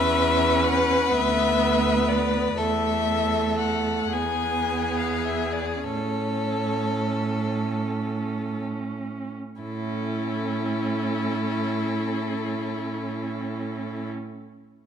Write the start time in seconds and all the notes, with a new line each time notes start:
Already playing: E2 C#4 B4 E5
0.64 F#5
1.11 D2 B3 E5
2.08 D5
2.56 E2 A3 A4 E5
3.59 F#5
4.10 E2 B3 G#4 G#5
4.97 F5
5.25 E5
5.53 D5
5.83 A2 C#4 A4 C#5
9.61 A2 C#4 E4 A4